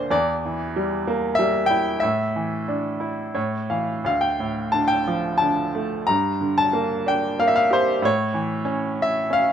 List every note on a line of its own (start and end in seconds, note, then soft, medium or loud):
0.00 0.13 D2 medium
0.00 0.13 A#2 soft
0.00 0.13 D3 medium
0.00 0.13 A#3 medium
0.00 0.11 D4 medium
0.00 0.13 A#4 medium
0.00 0.12 C5 medium
0.11 1.98 E2 medium
0.11 1.42 D5 medium
0.45 1.68 E3 medium
0.76 1.38 G3 medium
1.07 2.00 A#3 medium
1.35 2.01 G3 soft
1.35 1.66 E5 medium
1.66 2.02 E4 soft
1.66 2.02 G5 medium
2.00 3.32 A2 medium
2.00 2.63 E5 medium
2.36 3.33 E3 soft
2.68 3.34 D4 soft
3.00 3.34 E4 soft
3.34 4.03 A2 medium
3.34 3.68 C#5 medium
3.70 4.04 E3 soft
3.70 4.03 F5 soft
4.04 6.05 D2 medium
4.04 4.22 F5 medium
4.21 4.70 G5 medium
4.40 5.71 A2 soft
4.72 5.40 D3 soft
4.72 4.91 A5 medium
4.88 5.42 G5 medium
5.08 6.06 F3 soft
5.38 6.07 D3 soft
5.38 6.09 A5 medium
5.75 6.08 A3 soft
6.07 8.00 G2 medium
6.07 6.54 A#5 medium
6.41 7.67 D3 soft
6.58 7.04 A5 medium
6.73 7.37 A#3 medium
7.06 8.00 D4 medium
7.06 7.41 G5 medium
7.39 8.01 A#3 medium
7.39 7.47 F5 medium
7.47 7.54 E5 medium
7.55 7.74 F5 medium
7.70 8.02 G4 soft
7.70 8.05 C5 medium
8.02 9.53 A2 medium
8.02 9.03 C#5 medium
8.34 9.53 E3 medium
8.65 9.29 C#4 medium
9.02 9.35 E5 medium
9.30 9.53 C#4 medium
9.30 9.53 F5 medium